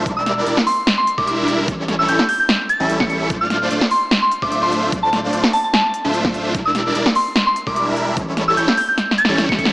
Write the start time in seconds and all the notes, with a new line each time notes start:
0.06 E1 G3 D4 D5, kick, closed hi-hat
0.17 E6
0.26 snare, closed hi-hat
0.46 E1 G3 D4 E4 A#4 D5, closed hi-hat
0.57 snare
0.67 C6, open hi-hat
0.87 snare, closed hi-hat
0.98 C6
1.07 closed hi-hat
1.18 E1 G3 D4 E4 A#4 E5 D6, kick
1.27 D6, closed hi-hat
1.48 closed hi-hat
1.68 A1 G3 C#4 C#5, kick, closed hi-hat
1.88 snare, closed hi-hat
1.99 E6
2.08 A1 G3 C#4 E4 A4 C#5 G6, closed hi-hat
2.19 snare
2.29 G6, open hi-hat
2.40 G6
2.49 snare, closed hi-hat
2.69 A6, closed hi-hat
2.80 A1 G3 C#4 E4 A4 E5
2.90 closed hi-hat
3.00 C#7, kick, snare
3.10 C#7, closed hi-hat
3.30 D1 A3 D4 F4 C5 D5, kick, closed hi-hat
3.41 F6
3.50 snare, closed hi-hat
3.71 D1 A3 D4 F4 C5 D5, closed hi-hat
3.81 snare
3.91 C6, open hi-hat
4.11 snare, closed hi-hat
4.22 C6
4.32 closed hi-hat
4.42 D1 A3 D4 F4 C5 E5 D6, kick
4.52 D6, closed hi-hat
4.63 C6
4.72 closed hi-hat
4.92 D1 D5, kick, closed hi-hat
5.03 A5
5.13 snare, closed hi-hat
5.33 D1 A3 D4 F4 C5 D5, closed hi-hat
5.44 snare
5.53 A5, open hi-hat
5.64 A5
5.74 A5, snare, closed hi-hat
5.94 closed hi-hat
6.04 D1 A3 D4 F4 C5 E5
6.14 closed hi-hat
6.25 kick, snare
6.34 closed hi-hat
6.55 E1 G3 D4 E4 A#4 D5, kick, closed hi-hat
6.65 E6
6.75 snare, closed hi-hat
6.95 E1 G3 D4 E4 A#4 D5, closed hi-hat
7.06 snare
7.15 C6, open hi-hat
7.36 snare, closed hi-hat
7.47 C6
7.56 closed hi-hat
7.67 E1 G3 D4 E4 A#4 E5 D6, kick
7.76 D6, closed hi-hat
7.97 closed hi-hat
8.17 A1 G3 C#4 E4 A4 C#5, kick, closed hi-hat
8.37 snare, closed hi-hat
8.48 E6
8.57 A1 G3 C#4 E4 A4 C#5 G6, closed hi-hat
8.68 snare
8.77 G6, open hi-hat
8.89 G6
8.98 snare, closed hi-hat
9.11 snare
9.18 A6, closed hi-hat
9.25 A1 E4 A4 C#5, snare
9.29 G3 C#4
9.38 snare, closed hi-hat
9.49 A1 G3 C#4 E4 A4 E5 C#7, kick, snare
9.58 C#7, kick, closed hi-hat
9.65 snare